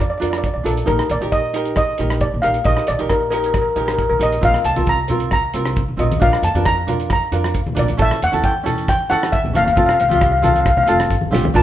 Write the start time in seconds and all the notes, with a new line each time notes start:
Already playing: F2
0.01 D5
0.10 D5
0.18 D4 F4 A#4 D5
0.22 F2 D5, closed hi-hat
0.30 D5, cross-stick, closed hi-hat
0.38 D5
0.44 D5, kick, closed hi-hat
0.54 A#1 D5
0.64 A#1 D4 F4 A4 A#4, closed hi-hat
0.77 closed hi-hat
0.86 A#1 D#4 G4 A#4, kick, closed hi-hat
0.99 cross-stick
1.10 A#1 D5, closed hi-hat
1.21 A#1 D#4 G4 A#4, closed hi-hat
1.32 D#5, kick, closed hi-hat
1.53 D#4 G4 A#4, closed hi-hat
1.66 closed hi-hat
1.76 D#5, kick, cross-stick, closed hi-hat
1.98 A#1 D#4 G4 A#4, closed hi-hat
2.10 cross-stick, closed hi-hat
2.21 D5, kick, closed hi-hat
2.34 A#1
2.42 A#1 D#4 G4 A#4 F5, closed hi-hat
2.54 closed hi-hat
2.64 A#1 D#4 G4 A#4 D#5, kick, closed hi-hat
2.77 cross-stick
2.87 A#1 D5, closed hi-hat
2.99 A#1 D#4 G4 A#4, closed hi-hat
3.10 A#4, kick, cross-stick, closed hi-hat
3.31 D#4 G4 A#4, closed hi-hat
3.37 A#4
3.44 A#4, closed hi-hat
3.54 A#4, kick, cross-stick, closed hi-hat
3.62 A#4
3.69 A#4
3.76 A#1 D#4 G4 A#4, closed hi-hat
3.86 A#4, cross-stick, closed hi-hat
3.93 A#4
3.99 A#4, kick, closed hi-hat
4.10 A#1 A#4
4.19 A#1 D#4 G4 A#4 D#5, closed hi-hat
4.33 closed hi-hat
4.41 A#1 C4 F4 A#4 F5, kick, closed hi-hat
4.54 cross-stick
4.65 C2 A5, closed hi-hat
4.76 C2 C4 F4 A#4, closed hi-hat, high conga
4.87 A#5, kick, closed hi-hat
5.08 C4 F4 A#4, closed hi-hat, low conga
5.20 closed hi-hat
5.31 A#5, kick, cross-stick, closed hi-hat
5.54 C2 C4 F4 A#4, closed hi-hat
5.65 cross-stick, closed hi-hat
5.76 kick, closed hi-hat
5.88 A#1
5.97 A#1 C4 F4 A#4 D#5, closed hi-hat, low conga
6.12 closed hi-hat, high conga
6.20 A#1 D4 F4 A#4 F5, kick, closed hi-hat
6.33 cross-stick
6.42 F2 A5, closed hi-hat
6.54 F2 D4 F4 A#4, closed hi-hat, high conga
6.65 A#5, kick, cross-stick, closed hi-hat
6.87 D4 F4 A#4, closed hi-hat, low conga
7.00 closed hi-hat
7.10 A#5, kick, cross-stick, closed hi-hat
7.32 F2 D4 F4 A#4, closed hi-hat
7.44 cross-stick, closed hi-hat
7.54 kick, closed hi-hat
7.66 A#1, high conga
7.75 A#1 D4 F4 A#4, closed hi-hat, low conga
7.79 D5
7.88 closed hi-hat, high conga
7.97 A#1 C#4 E4 A4, kick, closed hi-hat
8.02 E5
8.11 cross-stick
8.22 E2 F#5, closed hi-hat
8.32 E2 C#4 E4 A4, closed hi-hat, high conga
8.44 G5, kick, closed hi-hat
8.63 C#4 E4 A4, closed hi-hat, low conga
8.78 closed hi-hat
8.88 G5, kick, cross-stick, closed hi-hat
9.09 E2 C#4 E4 A4 F#5, closed hi-hat
9.23 cross-stick, closed hi-hat
9.32 E5, kick, closed hi-hat
9.44 A#1, high conga
9.53 F#1 C#4 E4 A4 F5, closed hi-hat, low conga
9.65 F5, closed hi-hat, high conga
9.73 C4 F5
9.77 F1 F4 A4 F5, kick, closed hi-hat
9.86 F5, cross-stick
9.95 F5
10.00 C2 F5, closed hi-hat
10.09 C2 C4 F4 G4 F5, closed hi-hat, high conga
10.15 F5
10.21 F5, kick, cross-stick, closed hi-hat
10.32 F5
10.38 C4 F5
10.43 F4 A4 F5, closed hi-hat, high conga, low conga
10.54 F5, closed hi-hat
10.61 F5
10.66 F5, kick, cross-stick, closed hi-hat
10.77 F5, low conga
10.84 C4 F4 F5, closed hi-hat
10.88 F1 A4 F5
11.00 cross-stick, closed hi-hat
11.10 G1, kick, closed hi-hat
11.21 high conga
11.31 A1 C4 F4 G4, snare, low conga
11.44 floor tom, high conga
11.54 A#1 D4 F4 A#4 A5